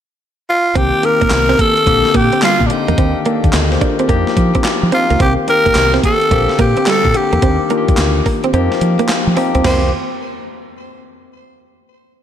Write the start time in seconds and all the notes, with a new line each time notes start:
0.49 F4
0.75 C2 D#3 A#3 C4 G4, kick, closed hi-hat
1.03 D#3 A#3 C4 G4 A#4, muted clean electric guitar stroke, closed hi-hat
1.21 A#1 A#3, kick, closed hi-hat
1.31 C2, muted clean electric guitar stroke, snare, clap, closed hi-hat
1.49 C4, snare
1.59 A#3 A4, kick, closed hi-hat
1.77 closed hi-hat
1.86 A#1 D3 A#3 C4 G4, muted clean electric guitar stroke, kick, closed hi-hat
2.05 snare
2.14 A#2 A#3 G4, kick, closed hi-hat
2.32 C4, closed hi-hat
2.42 G3 F4, snare, clap, closed hi-hat
2.60 A#2, kick
2.67 D3 A#3 C4 D4, muted clean electric guitar stroke, closed hi-hat
2.71 D#4 G4
2.88 E2 A#3, closed hi-hat
2.98 D#2 D#3 A#3 C4 D4 G4, kick, closed hi-hat
3.25 D#3 A#3 D4 A4, closed hi-hat
3.44 D#2, muted clean electric guitar stroke, kick, closed hi-hat
3.53 D2 A#4 D#5, muted clean electric guitar stroke, snare, clap, closed hi-hat
3.72 G4 C5, snare
3.81 D4 F4 A#4, kick, closed hi-hat
3.99 C4 D4 G4, closed hi-hat
4.09 F2 F3 A#3 D#4 G4, kick, closed hi-hat
4.27 snare
4.37 F3, muted clean electric guitar stroke, kick, closed hi-hat
4.55 C4, kick, closed hi-hat
4.64 muted clean electric guitar stroke, snare, clap, closed hi-hat
4.83 F3
4.92 F3 A#3 C4 D#4 F4, closed hi-hat
5.10 C#2 A#3, closed hi-hat
5.20 C2 D#3 A#3 C4 G4, kick, closed hi-hat
5.48 D#3 A#3 C4 G4 A#4, muted clean electric guitar stroke, closed hi-hat
5.66 A#1 A#3, kick, closed hi-hat
5.75 C2, muted clean electric guitar stroke, snare, clap, closed hi-hat
5.94 C4, snare
6.03 A#3 A4, kick, closed hi-hat
6.21 closed hi-hat
6.31 A#1 D3 A#3 C4 G4, muted clean electric guitar stroke, kick, closed hi-hat
6.49 snare
6.59 A#2 A#3 G4, kick, closed hi-hat
6.77 C4, closed hi-hat
6.86 G3 A4, snare, clap, closed hi-hat
7.05 A#2, kick
7.14 D3 A#3 C4 G4, muted clean electric guitar stroke, closed hi-hat
7.33 E2 A#3, closed hi-hat
7.42 D#2 D#3 A#3 C4 D4 G4, kick, closed hi-hat
7.70 D#3 A#3 D4 F4, closed hi-hat
7.78 G4
7.88 D#2, muted clean electric guitar stroke, kick, closed hi-hat
7.97 D2, muted clean electric guitar stroke, snare, clap, closed hi-hat
8.26 A#3, kick, open hi-hat
8.44 C4, closed hi-hat
8.53 F2 F3 A#3 C4 D#4 G4, closed hi-hat
8.72 snare
8.81 F3, muted clean electric guitar stroke, closed hi-hat
8.99 A#3, closed hi-hat
9.09 muted clean electric guitar stroke, snare, clap, closed hi-hat
9.27 F3
9.36 F3 A#3 C4 D#4 G4, open hi-hat
9.55 C#2 C4, closed hi-hat
9.64 C2 D#3 A#3 C4 G4 C5, snare, floor tom, crash